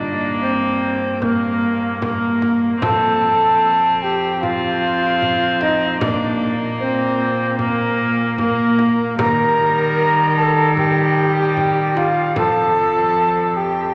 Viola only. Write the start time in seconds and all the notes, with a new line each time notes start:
Already playing: A#3
1.22 A#3
2.01 A#3
2.82 C4
4.42 C4
6.01 A#3
7.58 A#3
8.39 A#3
9.20 G3
10.77 G3
12.35 F3